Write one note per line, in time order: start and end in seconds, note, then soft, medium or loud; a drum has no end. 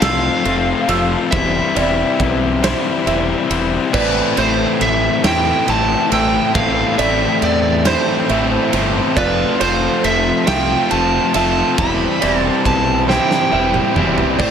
0.00 0.28 C2 loud
0.00 0.43 F3 loud
0.00 0.43 A3 loud
0.00 1.29 C4 medium
0.00 0.45 C4 loud
0.00 1.30 F4 medium
0.00 0.44 F4 loud
0.00 1.28 A4 medium
0.00 1.28 F5 loud
0.00 0.88 E6 medium
0.00 snare loud
0.00 ride loud
0.44 0.72 F1 medium
0.44 0.86 F3 medium
0.44 0.87 A3 medium
0.44 0.89 C4 medium
0.44 0.89 F4 medium
0.44 ride medium
0.88 1.15 F1 medium
0.88 1.29 F3 medium
0.88 1.30 A3 medium
0.88 1.32 C4 loud
0.88 1.30 F4 loud
0.88 1.76 E6 medium
0.88 ride medium
1.31 1.59 E1 loud
1.31 1.75 E3 loud
1.31 1.75 G3 loud
1.31 1.76 C4 loud
1.31 14.51 C4 medium
1.31 1.76 E4 loud
1.31 9.13 G4 medium
1.31 3.92 C5 medium
1.31 3.45 E5 medium
1.31 kick loud
1.31 ride loud
1.75 2.02 E1 medium
1.75 2.62 E3 medium
1.75 2.63 G3 medium
1.75 2.63 C4 loud
1.75 2.64 E4 loud
1.75 2.63 D5 medium
1.75 ride medium
2.20 2.72 B1 medium
2.20 kick medium
2.20 ride medium
2.62 3.05 E3 loud
2.62 3.06 G3 loud
2.62 3.07 C4 loud
2.62 3.07 E4 loud
2.62 3.07 C5 medium
2.62 snare loud
2.62 ride loud
3.06 3.33 E1 medium
3.06 3.49 E3 medium
3.06 3.49 G3 medium
3.06 3.50 C4 loud
3.06 3.51 E4 medium
3.06 3.94 E5 medium
3.06 ride medium
3.49 3.76 E1 medium
3.49 3.92 E3 medium
3.49 3.93 G3 medium
3.49 3.94 C4 medium
3.49 3.93 E4 medium
3.49 ride medium
3.92 4.20 A1 loud
3.92 4.36 A2 loud
3.92 4.36 E3 loud
3.92 4.37 A3 medium
3.92 4.37 C4 loud
3.92 4.38 E4 loud
3.92 11.74 A4 medium
3.92 4.38 B4 medium
3.92 4.37 D5 medium
3.92 kick loud
3.92 crash loud
4.36 4.64 A1 medium
4.36 5.22 A2 medium
4.36 5.23 E3 medium
4.36 5.24 A3 loud
4.36 5.24 C4 loud
4.36 5.25 E4 loud
4.36 5.25 C5 medium
4.36 4.83 C5 medium
4.36 ride medium
4.81 5.07 A1 medium
4.81 5.22 E5 medium
4.81 ride medium
5.23 5.51 E2 loud
5.23 5.65 A2 loud
5.23 5.67 E3 loud
5.23 5.67 A3 loud
5.23 5.68 C4 loud
5.23 5.68 E4 loud
5.23 6.11 E5 medium
5.23 5.70 G5 loud
5.23 snare loud
5.23 ride loud
5.66 5.94 A1 medium
5.66 6.09 A2 medium
5.66 6.11 E3 medium
5.66 6.12 A3 medium
5.66 6.12 C4 medium
5.66 6.12 E4 medium
5.66 6.09 A5 loud
5.66 ride medium
6.10 6.38 A1 medium
6.10 6.52 A2 medium
6.10 6.54 E3 medium
6.10 6.54 A3 loud
6.10 6.55 C4 medium
6.10 6.55 E4 medium
6.10 6.55 G5 medium
6.10 6.99 E6 medium
6.10 ride medium
6.54 6.82 A1 loud
6.54 6.96 A2 loud
6.54 6.98 E3 loud
6.54 6.98 A3 loud
6.54 6.98 C4 loud
6.54 6.99 E4 loud
6.54 6.98 F5 medium
6.54 kick loud
6.54 ride loud
6.97 7.25 A1 medium
6.97 7.84 A2 medium
6.97 7.85 E3 medium
6.97 7.85 A3 medium
6.97 7.86 C4 medium
6.97 7.87 E4 loud
6.97 7.86 D5 medium
6.97 7.39 E5 medium
6.97 ride medium
7.42 7.95 E2 medium
7.42 7.88 D5 medium
7.42 ride medium
7.85 8.28 A2 loud
7.85 8.29 E3 loud
7.85 8.29 A3 loud
7.85 8.30 C4 loud
7.85 8.31 E4 loud
7.85 8.30 C5 medium
7.85 8.80 C5 medium
7.85 snare loud
7.85 ride loud
8.29 8.56 A1 medium
8.29 8.72 A2 medium
8.29 8.73 E3 medium
8.29 8.73 A3 medium
8.29 8.74 C4 medium
8.29 8.75 E4 medium
8.29 9.17 E5 medium
8.29 ride medium
8.73 8.99 G1 medium
8.73 9.14 A2 medium
8.73 9.16 E3 medium
8.73 9.15 A3 medium
8.73 9.17 C4 loud
8.73 9.17 E4 medium
8.73 ride medium
9.16 9.43 F1 loud
9.16 9.58 F3 loud
9.16 9.59 A3 loud
9.16 9.60 C4 loud
9.16 11.76 F4 medium
9.16 9.60 F4 loud
9.16 9.58 B4 loud
9.16 9.60 D5 loud
9.16 kick loud
9.16 ride loud
9.60 9.87 F1 medium
9.60 10.45 F3 loud
9.60 10.46 A3 medium
9.60 10.47 C4 medium
9.60 10.47 F4 medium
9.60 10.47 C5 medium
9.60 10.05 C5 loud
9.60 ride medium
10.04 10.30 F1 medium
10.04 10.45 E5 loud
10.04 ride medium
10.47 10.74 C2 loud
10.47 10.89 F3 loud
10.47 10.90 A3 loud
10.47 10.91 C4 loud
10.47 10.91 F4 loud
10.47 11.33 E5 loud
10.47 10.92 G5 loud
10.47 snare loud
10.47 ride loud
10.90 11.18 F1 medium
10.90 11.33 F3 medium
10.90 11.34 A3 medium
10.90 11.35 C4 loud
10.90 11.35 F4 loud
10.90 11.31 A5 loud
10.90 ride medium
11.34 11.61 F1 medium
11.34 11.75 F3 medium
11.34 11.76 A3 medium
11.34 11.79 C4 medium
11.34 11.76 F4 loud
11.34 12.22 E5 medium
11.34 11.78 A5 loud
11.34 ride medium
11.77 12.05 E1 loud
11.77 12.20 E3 loud
11.77 12.21 G3 loud
11.77 12.22 C4 loud
11.77 12.22 E4 loud
11.77 14.38 G4 medium
11.77 14.38 C5 medium
11.77 12.39 B5 loud
11.77 kick loud
11.77 ride loud
12.21 12.49 E1 medium
12.21 13.08 E3 medium
12.21 13.09 G3 loud
12.21 13.09 C4 loud
12.21 13.10 E4 loud
12.21 13.09 D5 medium
12.21 ride medium
12.39 12.62 A5 loud
12.65 13.18 B1 medium
12.65 13.09 A5 medium
12.65 kick medium
12.65 ride medium
13.08 13.51 E3 loud
13.08 13.52 G3 loud
13.08 13.52 C4 loud
13.08 13.53 E4 loud
13.08 13.52 C5 medium
13.08 14.03 G5 loud
13.08 snare medium
13.31 snare medium
13.51 13.79 E1 medium
13.51 13.95 E3 medium
13.51 13.96 G3 medium
13.51 13.96 C4 medium
13.51 13.96 E4 medium
13.51 14.39 E5 medium
13.74 mid tom medium
13.95 14.22 E1 medium
13.95 14.38 E3 medium
13.95 14.39 G3 medium
13.95 14.39 C4 medium
13.95 14.40 E4 medium
13.95 mid tom loud
14.18 floor tom loud
14.38 14.51 A1 loud
14.38 14.51 A2 loud
14.38 14.51 E3 loud
14.38 14.51 A3 medium
14.38 14.51 C4 loud
14.38 14.51 E4 loud
14.38 14.51 G4 medium
14.38 14.51 A4 medium
14.38 14.51 C5 medium
14.38 14.51 D5 loud
14.38 14.51 G5 medium
14.38 kick loud
14.38 crash loud